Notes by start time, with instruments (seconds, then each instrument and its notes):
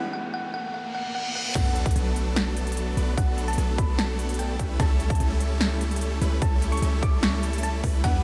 Already playing: grand piano E3 B3 C#4 G4, synth pluck F#5, riser
0.13 synth pluck F#5
0.34 synth pluck F#5
0.54 synth pluck F#5
0.74 synth pluck F#5, reverse cymbal
0.95 synth pluck F#5
1.15 synth pluck F#5
1.35 synth pluck F#5
1.55 808-style bass B1, supersaw synth F#3 A3 B3 D4 A4, synth pluck F#5, kick, closed hi-hat, crash, sub drop
1.76 closed hi-hat
1.86 synth pluck F#5, kick, closed hi-hat
1.91 closed hi-hat
1.96 808-style bass B1, supersaw synth F#3 A3 B3 D4 A4, closed hi-hat
2.16 closed hi-hat
2.36 snare, closed hi-hat
2.57 closed hi-hat
2.67 closed hi-hat
2.72 closed hi-hat
2.77 closed hi-hat
2.97 808-style bass B1, supersaw synth F#3 A3 B3 D4 B4, closed hi-hat
3.17 808-style bass B1, supersaw synth F#3 A3 B3 D4 A4, synth pluck F#5, kick, closed hi-hat
3.38 closed hi-hat
3.48 synth pluck A5, closed hi-hat
3.53 closed hi-hat
3.58 808-style bass B1, supersaw synth F#3 A3 B3 D4 A4, closed hi-hat
3.78 synth pluck B5, kick, closed hi-hat
3.98 synth pluck A5, snare, closed hi-hat
4.19 closed hi-hat
4.29 closed hi-hat
4.34 closed hi-hat
4.39 synth pluck G5, closed hi-hat
4.59 808-style bass C#2, supersaw synth G3 A3 C#4 E4 B4, kick, closed hi-hat
4.80 808-style bass C#2, supersaw synth G3 A3 C#4 E4 A4, synth pluck A5, kick, closed hi-hat
5.00 closed hi-hat
5.10 synth pluck A5, kick, closed hi-hat
5.15 closed hi-hat
5.20 808-style bass C#2, supersaw synth G3 A3 C#4 E4 A4, closed hi-hat
5.40 closed hi-hat
5.61 snare, closed hi-hat
5.81 closed hi-hat
5.91 closed hi-hat
5.96 closed hi-hat
6.01 closed hi-hat
6.21 808-style bass C#2, supersaw synth G3 A3 C#4 E4 B4, closed hi-hat
6.42 808-style bass C#2, supersaw synth G3 A3 C#4 E4 A4, synth pluck A5, kick, closed hi-hat
6.62 closed hi-hat
6.72 synth pluck C#6, closed hi-hat
6.77 closed hi-hat
6.82 808-style bass C#2, supersaw synth G3 A3 C#4 E4 A4, closed hi-hat
7.02 synth pluck D6, kick, closed hi-hat
7.23 synth pluck C#6, snare, closed hi-hat
7.43 closed hi-hat
7.53 closed hi-hat
7.58 closed hi-hat
7.63 synth pluck A5, closed hi-hat
7.84 808-style bass C#2, supersaw synth G3 A3 C#4 E4 B4, kick, open hi-hat
8.04 808-style bass E2, supersaw synth G3 B3 D4 E4 B4, synth pluck F#5, kick, closed hi-hat